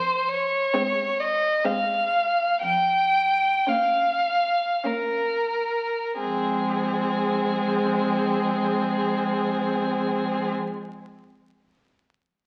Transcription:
Already playing: F2 C5
0.29 C#5
0.74 G#3 C4
1.19 D#5
1.64 G#3 C4 F5
2.61 F2 G5
3.67 A#3 C#4 F5
4.84 A#3 C#4 A#4
6.19 F2 G#3 C4 G#4

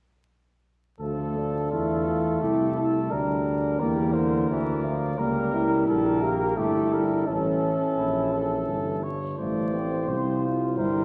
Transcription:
1.00 D2 F3 A3 A4
1.37 D4
1.71 E2 A3 F4
2.07 F4
2.41 C2 E4 G4
2.77 A4
3.10 D2 G3 D4 A#4
3.80 E2 G3 A#3 D5
4.14 D3 C5
4.49 D2 E3 D5
4.83 F3
5.18 C#2 G3 A#3 A#4
5.54 E4
5.88 A#1 G3 A4 A#4
6.22 A#3 G4 A#4
6.57 G1 A3 E4 G4 A4
6.93 G3 A#4
7.27 A1 E3 C#4 A4
7.97 A#1 E4
8.33 A4
8.68 G1
9.03 C#5
9.38 A1 F3 A3 C5 D5
9.73 C4
10.08 C2 F3 C5
10.44 F4
10.78 G1 G3 E4 A#4 C5

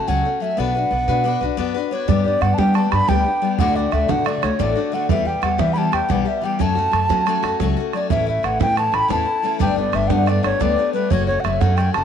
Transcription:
0.07 C#2 F#3 A3 C#4 F#4 F#5
0.23 A3 C#4 F#4
0.40 F#3 A3 C#4 F#4 E5
0.57 B1 B3 D4 F#4 B4 F#5
0.74 D4 F#4 B4
0.91 B1 B3 D4 F#4 B4
1.08 B2 B3 D4 F#4 B4
1.24 B3 D4 F#4 B4
1.41 B1 D4 F#4 B4
1.57 F#2 B3 D4 F#4 B4
1.74 D4 F#4 B4
1.91 B3 D4 F#4 B4 C#5
2.08 G2 G3 B3 D4 G4 D5, bodhran
2.17 bodhran
2.24 B3 D4 G4 D5, bodhran
2.41 G2 G3 B3 D4 G4 F#5, bodhran
2.54 G4 A5
2.58 G3 B3 D4 G5, bodhran
2.74 G3 B3 D4 G4 A5, bodhran
2.91 G2 B3 D4 G4 B5, bodhran
3.08 D2 G3 B3 D4 G4 G5, bodhran
3.24 B3 D4 G4
3.42 G3 B3 D4 G4
3.58 D2 A2 D3 A3 D4 F#4 F#5, bodhran
3.67 bodhran
3.75 D3 A3 D4 F#4 D5, bodhran
3.91 D2 D3 A3 D4 F#4 E5, bodhran
4.08 D2 A2 D3 A3 D4 F#4 F#5, bodhran
4.25 D3 A3 D4 F#4 D5, bodhran
4.42 D2 D3 A3 D4 F#4 C#5, bodhran
4.59 A1 D2 A2 D3 A3 D4 F#4 D5, bodhran
4.75 D3 A3 D4 F#4
4.92 D3 A3 D4 F#4 F#5
5.09 E2 E3 G3 B3 G4 E5, bodhran
5.18 bodhran
5.25 G3 B3 G4 G5, bodhran
5.42 E2 E3 G3 B3 G4 F#5, bodhran
5.58 E3 G3 B3 G4 E5, bodhran
5.73 E3 G3 B3 B5
5.78 G4 A5
5.92 E2 G3 B3 G4 G5, bodhran
6.09 B1 E3 G3 B3 G4 F#5, bodhran
6.25 G3 B3 G4 E5
6.42 E3 G3 B3 G4 G5
6.59 F#2 F#3 A3 C#4 F#4 A5, bodhran
6.68 bodhran
6.75 A3 C#4 F#4, bodhran
6.91 F#2 F#3 A3 C#4 F#4, bodhran
7.09 F#3 A3 C#4 F#4, bodhran
7.26 F#3 A3 C#4 F#4, bodhran
7.43 F#2 A3 C#4 F#4, bodhran
7.60 C#2 F#3 A3 C#4 F#4, bodhran
7.77 A3 C#4 F#4
7.93 F#3 A3 C#4 F#4 D5, bodhran
8.10 A1 A2 E3 A3 C#4 E4 E5, bodhran
8.19 bodhran
8.26 A3 C#4 E4 E5, bodhran
8.43 A1 E3 A3 C#4 E4 F#5, bodhran
8.60 A2 E3 A3 C#4 E4 G5, bodhran
8.76 E3 A3 C#4 E4 A5, bodhran
8.92 A1 A3 C#4 E4 B5, bodhran
9.08 E2 A2 E3 A3 C#4 E4 A5, bodhran
9.25 A3 C#4 E4
9.42 E3 A3 C#4 E4
9.59 G1 G2 D3 G3 A3 B3 D4 G5, bodhran
9.69 bodhran
9.76 G3 A3 B3 D4 D5, bodhran
9.92 G1 G3 A3 B3 D4 E5, bodhran
10.08 G2 D3 G3 A3 B3 D4 G5, bodhran
10.12 F#5
10.26 G3 A3 B3 D4 D5, bodhran
10.43 G1 G3 A3 B3 D4 C#5, bodhran
10.60 D2 G2 D3 G3 A3 B3 D4 D5, bodhran
10.76 G3 A3 B3 D4
10.93 G3 A3 B3 D4 B4
11.10 F#1 F#3 A3 C#4 F#4 C#5, bodhran
11.27 A3 C#4 F#4 C#5, bodhran
11.40 F#3 F#5
11.44 F#1 A3 C#4 F#4 E5, bodhran
11.61 F#2 F#3 A3 C#4 F#4 F#5, bodhran
11.76 F#3 A3 C#4 F#4 G5, bodhran
11.94 F#1 A3 C#4 F#4 A5, bodhran

